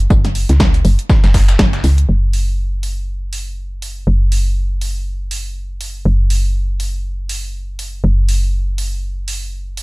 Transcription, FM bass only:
0, 0, Header, 1, 2, 480
1, 0, Start_track
1, 0, Tempo, 495868
1, 101, Time_signature, 4, 2, 24, 8
1, 9513, End_track
2, 0, Start_track
2, 0, Title_t, "FM bass"
2, 0, Program_c, 0, 39
2, 101, Note_on_c, 0, 30, 101
2, 444, Note_off_c, 0, 30, 0
2, 478, Note_on_c, 0, 37, 81
2, 795, Note_off_c, 0, 37, 0
2, 820, Note_on_c, 0, 30, 102
2, 936, Note_off_c, 0, 30, 0
2, 1198, Note_on_c, 0, 30, 92
2, 1515, Note_off_c, 0, 30, 0
2, 1540, Note_on_c, 0, 30, 88
2, 1749, Note_off_c, 0, 30, 0
2, 1780, Note_on_c, 0, 37, 91
2, 1989, Note_off_c, 0, 37, 0
2, 2021, Note_on_c, 0, 30, 85
2, 3920, Note_off_c, 0, 30, 0
2, 3940, Note_on_c, 0, 30, 84
2, 5840, Note_off_c, 0, 30, 0
2, 5861, Note_on_c, 0, 30, 85
2, 7760, Note_off_c, 0, 30, 0
2, 7781, Note_on_c, 0, 30, 83
2, 9513, Note_off_c, 0, 30, 0
2, 9513, End_track
0, 0, End_of_file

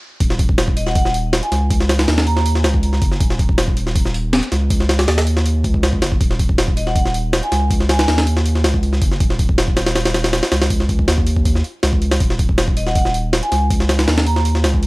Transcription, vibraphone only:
0, 0, Header, 1, 2, 480
1, 0, Start_track
1, 0, Key_signature, -6, "minor"
1, 0, Tempo, 375000
1, 264, Time_signature, 4, 2, 24, 8
1, 19030, End_track
2, 0, Start_track
2, 0, Title_t, "Vibraphone"
2, 0, Program_c, 0, 11
2, 980, Note_on_c, 0, 75, 92
2, 1082, Note_off_c, 0, 75, 0
2, 1106, Note_on_c, 0, 78, 90
2, 1462, Note_off_c, 0, 78, 0
2, 1828, Note_on_c, 0, 80, 89
2, 2114, Note_off_c, 0, 80, 0
2, 2902, Note_on_c, 0, 82, 90
2, 2983, Note_off_c, 0, 82, 0
2, 3028, Note_on_c, 0, 82, 78
2, 3101, Note_off_c, 0, 82, 0
2, 8663, Note_on_c, 0, 75, 94
2, 8764, Note_off_c, 0, 75, 0
2, 8791, Note_on_c, 0, 78, 91
2, 9144, Note_off_c, 0, 78, 0
2, 9512, Note_on_c, 0, 80, 93
2, 9796, Note_off_c, 0, 80, 0
2, 10106, Note_on_c, 0, 80, 88
2, 10185, Note_off_c, 0, 80, 0
2, 10231, Note_on_c, 0, 80, 77
2, 10303, Note_off_c, 0, 80, 0
2, 16345, Note_on_c, 0, 75, 91
2, 16445, Note_off_c, 0, 75, 0
2, 16468, Note_on_c, 0, 78, 94
2, 16823, Note_off_c, 0, 78, 0
2, 17186, Note_on_c, 0, 80, 94
2, 17473, Note_off_c, 0, 80, 0
2, 18261, Note_on_c, 0, 82, 90
2, 18342, Note_off_c, 0, 82, 0
2, 18387, Note_on_c, 0, 82, 78
2, 18461, Note_off_c, 0, 82, 0
2, 19030, End_track
0, 0, End_of_file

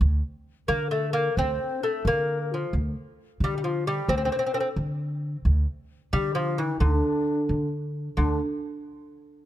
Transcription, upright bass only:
0, 0, Header, 1, 2, 480
1, 0, Start_track
1, 0, Tempo, 453858
1, 5, Time_signature, 6, 3, 24, 8
1, 10000, End_track
2, 0, Start_track
2, 0, Title_t, "Upright bass"
2, 0, Program_c, 0, 32
2, 7, Note_on_c, 0, 38, 99
2, 213, Note_off_c, 0, 38, 0
2, 727, Note_on_c, 0, 50, 90
2, 1345, Note_off_c, 0, 50, 0
2, 1450, Note_on_c, 0, 38, 91
2, 1654, Note_off_c, 0, 38, 0
2, 2167, Note_on_c, 0, 50, 90
2, 2784, Note_off_c, 0, 50, 0
2, 2889, Note_on_c, 0, 38, 90
2, 3093, Note_off_c, 0, 38, 0
2, 3600, Note_on_c, 0, 50, 86
2, 4220, Note_off_c, 0, 50, 0
2, 4320, Note_on_c, 0, 38, 92
2, 4527, Note_off_c, 0, 38, 0
2, 5038, Note_on_c, 0, 50, 88
2, 5659, Note_off_c, 0, 50, 0
2, 5764, Note_on_c, 0, 38, 95
2, 5970, Note_off_c, 0, 38, 0
2, 6485, Note_on_c, 0, 50, 85
2, 7103, Note_off_c, 0, 50, 0
2, 7197, Note_on_c, 0, 38, 93
2, 7406, Note_off_c, 0, 38, 0
2, 7923, Note_on_c, 0, 50, 85
2, 8542, Note_off_c, 0, 50, 0
2, 8646, Note_on_c, 0, 38, 88
2, 8867, Note_off_c, 0, 38, 0
2, 10000, End_track
0, 0, End_of_file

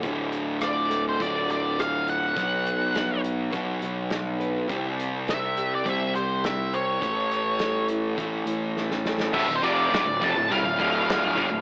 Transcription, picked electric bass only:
0, 0, Header, 1, 2, 480
1, 0, Start_track
1, 0, Tempo, 581395
1, 26, Time_signature, 4, 2, 24, 8
1, 9587, End_track
2, 0, Start_track
2, 0, Title_t, "Picked electric bass"
2, 0, Program_c, 0, 34
2, 27, Note_on_c, 0, 26, 84
2, 955, Note_off_c, 0, 26, 0
2, 992, Note_on_c, 0, 26, 96
2, 1919, Note_off_c, 0, 26, 0
2, 1954, Note_on_c, 0, 35, 72
2, 2880, Note_off_c, 0, 35, 0
2, 2920, Note_on_c, 0, 35, 81
2, 3140, Note_off_c, 0, 35, 0
2, 3156, Note_on_c, 0, 35, 81
2, 3842, Note_off_c, 0, 35, 0
2, 3875, Note_on_c, 0, 36, 76
2, 4802, Note_off_c, 0, 36, 0
2, 4840, Note_on_c, 0, 36, 93
2, 5765, Note_off_c, 0, 36, 0
2, 5795, Note_on_c, 0, 33, 83
2, 6722, Note_off_c, 0, 33, 0
2, 6752, Note_on_c, 0, 33, 85
2, 6977, Note_off_c, 0, 33, 0
2, 6983, Note_on_c, 0, 33, 78
2, 7674, Note_off_c, 0, 33, 0
2, 7715, Note_on_c, 0, 26, 90
2, 7825, Note_off_c, 0, 26, 0
2, 7834, Note_on_c, 0, 26, 77
2, 7942, Note_off_c, 0, 26, 0
2, 7947, Note_on_c, 0, 29, 95
2, 8172, Note_off_c, 0, 29, 0
2, 8181, Note_on_c, 0, 26, 94
2, 8297, Note_off_c, 0, 26, 0
2, 8314, Note_on_c, 0, 26, 83
2, 8424, Note_off_c, 0, 26, 0
2, 8439, Note_on_c, 0, 29, 95
2, 8546, Note_off_c, 0, 29, 0
2, 8550, Note_on_c, 0, 26, 82
2, 8661, Note_off_c, 0, 26, 0
2, 8666, Note_on_c, 0, 36, 113
2, 8779, Note_off_c, 0, 36, 0
2, 8787, Note_on_c, 0, 26, 80
2, 8899, Note_off_c, 0, 26, 0
2, 8917, Note_on_c, 0, 26, 88
2, 9357, Note_off_c, 0, 26, 0
2, 9396, Note_on_c, 0, 31, 94
2, 9502, Note_off_c, 0, 31, 0
2, 9511, Note_on_c, 0, 26, 90
2, 9587, Note_off_c, 0, 26, 0
2, 9587, End_track
0, 0, End_of_file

